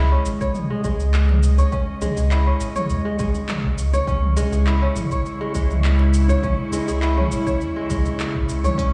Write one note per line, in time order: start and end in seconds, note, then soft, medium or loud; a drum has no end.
0.00 0.17 C#2 medium
0.00 8.93 C#3 medium
0.00 0.69 G#3 loud
0.00 8.93 G#3 medium
0.00 0.11 C#4 medium
0.00 1.53 E4 medium
0.00 1.19 G#4 medium
0.00 0.38 C#5 loud
0.00 8.93 C#5 medium
0.00 4.07 D#5 medium
0.12 1.72 C#4 medium
0.26 0.35 G#1 medium
0.26 shaker medium
0.41 1.56 C#5 medium
0.41 kick medium
0.41 djembe slap medium
0.41 shaker soft
0.55 mid tom medium
0.55 shaker soft
0.70 0.83 G#3 medium
0.84 0.94 C#2 medium
0.84 2.00 G#3 loud
0.84 kick loud
0.84 shaker medium
1.00 1.64 C#2 medium
1.00 shaker soft
1.14 clap loud
1.14 shaker soft
1.28 mid tom medium
1.28 djembe slap medium
1.28 djembe tone soft
1.43 djembe slap medium
1.43 shaker medium
1.58 2.73 C#5 medium
1.58 djembe tone medium
1.58 djembe bass medium
1.58 shaker soft
1.72 2.46 C#4 medium
1.72 kick loud
1.72 shaker soft
2.01 3.04 G#3 loud
2.01 mid tom medium
2.01 djembe slap soft
2.01 djembe tone medium
2.01 djembe bass medium
2.01 shaker medium
2.17 2.52 C#2 medium
2.17 3.54 G#4 medium
2.17 shaker soft
2.31 3.88 E4 medium
2.31 clap medium
2.31 shaker soft
2.47 4.07 C#4 medium
2.60 2.70 G#1 medium
2.60 shaker medium
2.76 3.90 C#5 medium
2.76 mid tom medium
2.76 djembe slap medium
2.76 shaker soft
2.90 2.99 E2 medium
2.90 shaker soft
3.05 3.18 G#3 medium
3.05 djembe tone soft
3.19 3.29 C#2 medium
3.19 4.35 G#3 medium
3.19 kick loud
3.19 shaker medium
3.34 djembe bass medium
3.34 shaker soft
3.49 clap loud
3.49 mid tom medium
3.49 shaker soft
3.64 3.73 G#1 medium
3.64 kick medium
3.78 3.97 C#2 medium
3.78 shaker medium
3.93 5.08 C#5 medium
3.93 djembe tone medium
3.93 djembe bass loud
3.93 shaker soft
4.07 4.43 C#2 medium
4.07 4.82 C#4 medium
4.07 8.78 E4 medium
4.07 kick loud
4.07 shaker soft
4.23 mid tom medium
4.37 5.40 G#3 loud
4.37 djembe slap soft
4.37 djembe tone medium
4.37 djembe bass medium
4.37 shaker medium
4.52 4.87 C#2 medium
4.52 5.89 G#4 medium
4.52 djembe tone medium
4.52 shaker soft
4.67 6.23 E4 medium
4.67 clap medium
4.67 shaker soft
4.82 6.43 C#4 medium
4.96 5.05 G#1 medium
4.96 mid tom medium
4.96 shaker medium
5.11 6.26 C#5 medium
5.11 kick medium
5.11 djembe slap soft
5.11 shaker soft
5.26 shaker soft
5.41 5.54 G#3 medium
5.55 5.64 C#2 medium
5.55 6.72 G#3 medium
5.55 kick loud
5.55 shaker medium
5.71 6.35 C#2 medium
5.71 mid tom medium
5.71 shaker soft
5.84 clap loud
5.84 shaker soft
5.99 djembe slap medium
5.99 djembe tone soft
6.13 djembe slap soft
6.13 shaker medium
6.28 7.44 C#5 medium
6.28 djembe tone medium
6.28 djembe bass medium
6.28 shaker soft
6.43 7.17 C#4 medium
6.43 kick loud
6.43 mid tom medium
6.43 shaker soft
6.71 7.75 G#3 medium
6.71 djembe slap soft
6.71 djembe tone medium
6.71 djembe bass medium
6.71 shaker medium
6.88 7.23 C#2 medium
6.88 8.24 G#4 medium
6.88 shaker soft
7.02 8.58 E4 medium
7.02 clap medium
7.02 shaker soft
7.17 8.77 C#4 medium
7.17 mid tom medium
7.32 7.41 G#1 medium
7.32 shaker medium
7.47 8.61 C#5 loud
7.47 kick medium
7.47 djembe slap soft
7.47 shaker soft
7.61 7.70 E2 medium
7.61 shaker soft
7.76 7.89 G#3 medium
7.76 djembe tone soft
7.90 8.00 C#2 medium
7.90 8.93 G#3 loud
7.90 kick loud
7.90 mid tom medium
7.90 shaker medium
8.05 djembe bass medium
8.05 shaker soft
8.20 clap loud
8.20 shaker soft
8.35 8.44 G#1 medium
8.35 kick medium
8.49 8.67 C#2 medium
8.49 shaker medium
8.64 8.93 C#5 loud
8.64 mid tom medium
8.64 djembe tone medium
8.64 djembe bass medium
8.64 shaker soft
8.78 8.93 C#2 loud
8.78 8.93 C#4 medium
8.78 8.93 D#5 medium
8.78 kick loud
8.78 open hi-hat medium
8.78 shaker soft